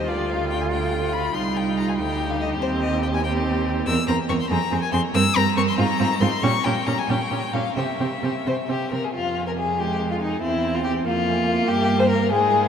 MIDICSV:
0, 0, Header, 1, 5, 480
1, 0, Start_track
1, 0, Key_signature, -3, "minor"
1, 0, Tempo, 423131
1, 84, Time_signature, 6, 3, 24, 8
1, 4389, Key_signature, -4, "minor"
1, 6803, Tempo, 437637
1, 8243, Tempo, 459067
1, 10163, Tempo, 423430
1, 14169, End_track
2, 0, Start_track
2, 0, Title_t, "Violin"
2, 0, Program_c, 0, 40
2, 95, Note_on_c, 0, 74, 82
2, 336, Note_on_c, 0, 77, 79
2, 353, Note_off_c, 0, 74, 0
2, 562, Note_off_c, 0, 77, 0
2, 569, Note_on_c, 0, 79, 78
2, 693, Note_on_c, 0, 80, 68
2, 710, Note_off_c, 0, 79, 0
2, 798, Note_off_c, 0, 80, 0
2, 805, Note_on_c, 0, 79, 81
2, 1277, Note_on_c, 0, 83, 89
2, 1294, Note_off_c, 0, 79, 0
2, 1521, Note_on_c, 0, 84, 89
2, 1538, Note_off_c, 0, 83, 0
2, 1772, Note_on_c, 0, 79, 80
2, 1789, Note_off_c, 0, 84, 0
2, 2010, Note_on_c, 0, 82, 86
2, 2027, Note_off_c, 0, 79, 0
2, 2138, Note_on_c, 0, 80, 60
2, 2155, Note_off_c, 0, 82, 0
2, 2237, Note_off_c, 0, 80, 0
2, 2244, Note_on_c, 0, 79, 77
2, 2610, Note_on_c, 0, 77, 76
2, 2627, Note_off_c, 0, 79, 0
2, 2722, Note_off_c, 0, 77, 0
2, 2729, Note_on_c, 0, 75, 86
2, 2820, Note_off_c, 0, 75, 0
2, 2965, Note_on_c, 0, 72, 88
2, 3056, Note_off_c, 0, 72, 0
2, 3186, Note_on_c, 0, 75, 82
2, 3427, Note_off_c, 0, 75, 0
2, 3433, Note_on_c, 0, 79, 83
2, 3481, Note_off_c, 0, 79, 0
2, 3562, Note_on_c, 0, 80, 76
2, 3665, Note_off_c, 0, 80, 0
2, 3672, Note_on_c, 0, 79, 85
2, 3762, Note_off_c, 0, 79, 0
2, 4385, Note_on_c, 0, 88, 106
2, 4610, Note_off_c, 0, 88, 0
2, 4626, Note_on_c, 0, 82, 96
2, 4717, Note_off_c, 0, 82, 0
2, 4867, Note_on_c, 0, 85, 91
2, 4915, Note_off_c, 0, 85, 0
2, 4995, Note_on_c, 0, 84, 76
2, 5096, Note_off_c, 0, 84, 0
2, 5103, Note_on_c, 0, 82, 94
2, 5459, Note_off_c, 0, 82, 0
2, 5466, Note_on_c, 0, 80, 90
2, 5575, Note_off_c, 0, 80, 0
2, 5582, Note_on_c, 0, 84, 104
2, 5673, Note_off_c, 0, 84, 0
2, 5837, Note_on_c, 0, 88, 119
2, 6078, Note_on_c, 0, 82, 110
2, 6095, Note_off_c, 0, 88, 0
2, 6313, Note_off_c, 0, 82, 0
2, 6320, Note_on_c, 0, 85, 106
2, 6369, Note_off_c, 0, 85, 0
2, 6448, Note_on_c, 0, 84, 84
2, 6550, Note_off_c, 0, 84, 0
2, 6557, Note_on_c, 0, 82, 109
2, 7031, Note_on_c, 0, 84, 96
2, 7047, Note_off_c, 0, 82, 0
2, 7275, Note_on_c, 0, 85, 113
2, 7291, Note_off_c, 0, 84, 0
2, 7510, Note_on_c, 0, 79, 99
2, 7527, Note_off_c, 0, 85, 0
2, 7753, Note_on_c, 0, 82, 100
2, 7770, Note_off_c, 0, 79, 0
2, 7886, Note_on_c, 0, 80, 85
2, 7903, Note_off_c, 0, 82, 0
2, 8001, Note_on_c, 0, 79, 89
2, 8018, Note_off_c, 0, 80, 0
2, 8476, Note_on_c, 0, 77, 86
2, 8491, Note_off_c, 0, 79, 0
2, 8713, Note_off_c, 0, 77, 0
2, 8719, Note_on_c, 0, 76, 71
2, 9903, Note_off_c, 0, 76, 0
2, 10158, Note_on_c, 0, 77, 47
2, 10404, Note_on_c, 0, 80, 42
2, 10421, Note_off_c, 0, 77, 0
2, 10649, Note_on_c, 0, 77, 42
2, 10666, Note_off_c, 0, 80, 0
2, 10883, Note_on_c, 0, 80, 42
2, 10900, Note_off_c, 0, 77, 0
2, 11120, Note_off_c, 0, 80, 0
2, 11127, Note_on_c, 0, 77, 40
2, 11365, Note_on_c, 0, 80, 44
2, 11382, Note_off_c, 0, 77, 0
2, 11594, Note_off_c, 0, 80, 0
2, 11601, Note_on_c, 0, 84, 44
2, 11843, Note_on_c, 0, 82, 45
2, 11860, Note_off_c, 0, 84, 0
2, 12083, Note_on_c, 0, 84, 49
2, 12100, Note_off_c, 0, 82, 0
2, 12313, Note_off_c, 0, 84, 0
2, 12320, Note_on_c, 0, 77, 48
2, 12565, Note_on_c, 0, 80, 51
2, 12582, Note_off_c, 0, 77, 0
2, 12793, Note_on_c, 0, 77, 53
2, 12810, Note_off_c, 0, 80, 0
2, 13026, Note_off_c, 0, 77, 0
2, 13033, Note_on_c, 0, 76, 57
2, 13758, Note_on_c, 0, 77, 54
2, 13775, Note_off_c, 0, 76, 0
2, 14169, Note_off_c, 0, 77, 0
2, 14169, End_track
3, 0, Start_track
3, 0, Title_t, "Violin"
3, 0, Program_c, 1, 40
3, 90, Note_on_c, 1, 65, 59
3, 2260, Note_on_c, 1, 67, 58
3, 2277, Note_off_c, 1, 65, 0
3, 3674, Note_off_c, 1, 67, 0
3, 3681, Note_on_c, 1, 67, 62
3, 4377, Note_off_c, 1, 67, 0
3, 4402, Note_on_c, 1, 70, 69
3, 4492, Note_off_c, 1, 70, 0
3, 4641, Note_on_c, 1, 70, 64
3, 4731, Note_off_c, 1, 70, 0
3, 4868, Note_on_c, 1, 70, 60
3, 4959, Note_off_c, 1, 70, 0
3, 5114, Note_on_c, 1, 68, 64
3, 5205, Note_off_c, 1, 68, 0
3, 5340, Note_on_c, 1, 68, 60
3, 5431, Note_off_c, 1, 68, 0
3, 5582, Note_on_c, 1, 68, 66
3, 5673, Note_off_c, 1, 68, 0
3, 5843, Note_on_c, 1, 70, 71
3, 5933, Note_off_c, 1, 70, 0
3, 6077, Note_on_c, 1, 70, 70
3, 6168, Note_off_c, 1, 70, 0
3, 6320, Note_on_c, 1, 70, 69
3, 6411, Note_off_c, 1, 70, 0
3, 6558, Note_on_c, 1, 65, 70
3, 6648, Note_off_c, 1, 65, 0
3, 6799, Note_on_c, 1, 65, 55
3, 6887, Note_off_c, 1, 65, 0
3, 7043, Note_on_c, 1, 65, 64
3, 7130, Note_off_c, 1, 65, 0
3, 7281, Note_on_c, 1, 67, 68
3, 7369, Note_off_c, 1, 67, 0
3, 7525, Note_on_c, 1, 67, 66
3, 7613, Note_off_c, 1, 67, 0
3, 7765, Note_on_c, 1, 67, 54
3, 7853, Note_off_c, 1, 67, 0
3, 8003, Note_on_c, 1, 67, 61
3, 8090, Note_off_c, 1, 67, 0
3, 8242, Note_on_c, 1, 67, 49
3, 8326, Note_off_c, 1, 67, 0
3, 8489, Note_on_c, 1, 67, 54
3, 8573, Note_off_c, 1, 67, 0
3, 8730, Note_on_c, 1, 67, 56
3, 8814, Note_off_c, 1, 67, 0
3, 8970, Note_on_c, 1, 67, 48
3, 9054, Note_off_c, 1, 67, 0
3, 9220, Note_on_c, 1, 67, 49
3, 9303, Note_off_c, 1, 67, 0
3, 9456, Note_on_c, 1, 72, 69
3, 9539, Note_off_c, 1, 72, 0
3, 9693, Note_on_c, 1, 67, 59
3, 9915, Note_off_c, 1, 67, 0
3, 9921, Note_on_c, 1, 70, 62
3, 10052, Note_on_c, 1, 68, 43
3, 10068, Note_off_c, 1, 70, 0
3, 10152, Note_off_c, 1, 68, 0
3, 10159, Note_on_c, 1, 65, 63
3, 10505, Note_off_c, 1, 65, 0
3, 10527, Note_on_c, 1, 70, 62
3, 10577, Note_off_c, 1, 70, 0
3, 10659, Note_on_c, 1, 68, 53
3, 10900, Note_on_c, 1, 67, 63
3, 10917, Note_off_c, 1, 68, 0
3, 11250, Note_off_c, 1, 67, 0
3, 11257, Note_on_c, 1, 65, 58
3, 11305, Note_off_c, 1, 65, 0
3, 11370, Note_on_c, 1, 63, 59
3, 11599, Note_off_c, 1, 63, 0
3, 11606, Note_on_c, 1, 64, 68
3, 11975, Note_on_c, 1, 65, 57
3, 11992, Note_off_c, 1, 64, 0
3, 12074, Note_off_c, 1, 65, 0
3, 12081, Note_on_c, 1, 67, 71
3, 12172, Note_off_c, 1, 67, 0
3, 12329, Note_on_c, 1, 65, 79
3, 13031, Note_on_c, 1, 67, 84
3, 13048, Note_off_c, 1, 65, 0
3, 13389, Note_on_c, 1, 72, 80
3, 13406, Note_off_c, 1, 67, 0
3, 13501, Note_off_c, 1, 72, 0
3, 13508, Note_on_c, 1, 70, 78
3, 13747, Note_off_c, 1, 70, 0
3, 13756, Note_on_c, 1, 68, 80
3, 14169, Note_off_c, 1, 68, 0
3, 14169, End_track
4, 0, Start_track
4, 0, Title_t, "Viola"
4, 0, Program_c, 2, 41
4, 88, Note_on_c, 2, 65, 51
4, 1508, Note_off_c, 2, 65, 0
4, 1533, Note_on_c, 2, 63, 52
4, 2933, Note_off_c, 2, 63, 0
4, 2966, Note_on_c, 2, 60, 58
4, 3664, Note_off_c, 2, 60, 0
4, 3676, Note_on_c, 2, 60, 67
4, 4374, Note_off_c, 2, 60, 0
4, 4385, Note_on_c, 2, 60, 65
4, 4476, Note_off_c, 2, 60, 0
4, 4628, Note_on_c, 2, 60, 63
4, 4719, Note_off_c, 2, 60, 0
4, 4866, Note_on_c, 2, 60, 56
4, 4956, Note_off_c, 2, 60, 0
4, 5116, Note_on_c, 2, 60, 66
4, 5207, Note_off_c, 2, 60, 0
4, 5356, Note_on_c, 2, 60, 59
4, 5447, Note_off_c, 2, 60, 0
4, 5594, Note_on_c, 2, 60, 67
4, 5685, Note_off_c, 2, 60, 0
4, 5842, Note_on_c, 2, 60, 70
4, 5932, Note_off_c, 2, 60, 0
4, 6078, Note_on_c, 2, 60, 68
4, 6169, Note_off_c, 2, 60, 0
4, 6319, Note_on_c, 2, 60, 68
4, 6409, Note_off_c, 2, 60, 0
4, 6549, Note_on_c, 2, 60, 64
4, 6640, Note_off_c, 2, 60, 0
4, 6798, Note_on_c, 2, 60, 65
4, 6886, Note_off_c, 2, 60, 0
4, 7040, Note_on_c, 2, 60, 68
4, 7128, Note_off_c, 2, 60, 0
4, 7284, Note_on_c, 2, 61, 72
4, 7372, Note_off_c, 2, 61, 0
4, 7528, Note_on_c, 2, 61, 61
4, 7616, Note_off_c, 2, 61, 0
4, 7766, Note_on_c, 2, 61, 59
4, 7854, Note_off_c, 2, 61, 0
4, 8014, Note_on_c, 2, 61, 60
4, 8102, Note_off_c, 2, 61, 0
4, 8251, Note_on_c, 2, 61, 54
4, 8335, Note_off_c, 2, 61, 0
4, 8490, Note_on_c, 2, 61, 55
4, 8573, Note_off_c, 2, 61, 0
4, 8729, Note_on_c, 2, 60, 52
4, 8813, Note_off_c, 2, 60, 0
4, 8967, Note_on_c, 2, 60, 51
4, 9051, Note_off_c, 2, 60, 0
4, 9204, Note_on_c, 2, 60, 50
4, 9288, Note_off_c, 2, 60, 0
4, 9450, Note_on_c, 2, 60, 54
4, 9533, Note_off_c, 2, 60, 0
4, 9687, Note_on_c, 2, 60, 46
4, 9770, Note_off_c, 2, 60, 0
4, 9926, Note_on_c, 2, 60, 47
4, 10010, Note_off_c, 2, 60, 0
4, 10897, Note_on_c, 2, 56, 54
4, 11570, Note_off_c, 2, 56, 0
4, 11615, Note_on_c, 2, 60, 59
4, 12322, Note_on_c, 2, 58, 74
4, 12339, Note_off_c, 2, 60, 0
4, 13761, Note_on_c, 2, 56, 68
4, 13778, Note_off_c, 2, 58, 0
4, 14169, Note_off_c, 2, 56, 0
4, 14169, End_track
5, 0, Start_track
5, 0, Title_t, "Cello"
5, 0, Program_c, 3, 42
5, 81, Note_on_c, 3, 38, 62
5, 1530, Note_off_c, 3, 38, 0
5, 1537, Note_on_c, 3, 36, 62
5, 2258, Note_on_c, 3, 38, 54
5, 2275, Note_off_c, 3, 36, 0
5, 2964, Note_off_c, 3, 38, 0
5, 2968, Note_on_c, 3, 39, 72
5, 4364, Note_off_c, 3, 39, 0
5, 4388, Note_on_c, 3, 40, 73
5, 4478, Note_off_c, 3, 40, 0
5, 4630, Note_on_c, 3, 40, 64
5, 4721, Note_off_c, 3, 40, 0
5, 4868, Note_on_c, 3, 40, 69
5, 4959, Note_off_c, 3, 40, 0
5, 5108, Note_on_c, 3, 41, 72
5, 5198, Note_off_c, 3, 41, 0
5, 5351, Note_on_c, 3, 41, 59
5, 5442, Note_off_c, 3, 41, 0
5, 5590, Note_on_c, 3, 41, 71
5, 5681, Note_off_c, 3, 41, 0
5, 5832, Note_on_c, 3, 43, 88
5, 5922, Note_off_c, 3, 43, 0
5, 6079, Note_on_c, 3, 43, 79
5, 6170, Note_off_c, 3, 43, 0
5, 6318, Note_on_c, 3, 43, 63
5, 6409, Note_off_c, 3, 43, 0
5, 6561, Note_on_c, 3, 44, 76
5, 6652, Note_off_c, 3, 44, 0
5, 6802, Note_on_c, 3, 44, 62
5, 6890, Note_off_c, 3, 44, 0
5, 7035, Note_on_c, 3, 44, 80
5, 7123, Note_off_c, 3, 44, 0
5, 7277, Note_on_c, 3, 46, 84
5, 7364, Note_off_c, 3, 46, 0
5, 7527, Note_on_c, 3, 46, 66
5, 7615, Note_off_c, 3, 46, 0
5, 7757, Note_on_c, 3, 46, 66
5, 7845, Note_off_c, 3, 46, 0
5, 7999, Note_on_c, 3, 46, 68
5, 8087, Note_off_c, 3, 46, 0
5, 8240, Note_on_c, 3, 46, 55
5, 8324, Note_off_c, 3, 46, 0
5, 8480, Note_on_c, 3, 46, 67
5, 8563, Note_off_c, 3, 46, 0
5, 8717, Note_on_c, 3, 48, 67
5, 8801, Note_off_c, 3, 48, 0
5, 8956, Note_on_c, 3, 48, 59
5, 9040, Note_off_c, 3, 48, 0
5, 9199, Note_on_c, 3, 48, 56
5, 9283, Note_off_c, 3, 48, 0
5, 9444, Note_on_c, 3, 48, 54
5, 9528, Note_off_c, 3, 48, 0
5, 9687, Note_on_c, 3, 48, 47
5, 9770, Note_off_c, 3, 48, 0
5, 9923, Note_on_c, 3, 48, 52
5, 10007, Note_off_c, 3, 48, 0
5, 10166, Note_on_c, 3, 41, 49
5, 11572, Note_off_c, 3, 41, 0
5, 11620, Note_on_c, 3, 40, 55
5, 12315, Note_off_c, 3, 40, 0
5, 12336, Note_on_c, 3, 41, 56
5, 13024, Note_off_c, 3, 41, 0
5, 13039, Note_on_c, 3, 43, 64
5, 13760, Note_on_c, 3, 44, 54
5, 13777, Note_off_c, 3, 43, 0
5, 14169, Note_off_c, 3, 44, 0
5, 14169, End_track
0, 0, End_of_file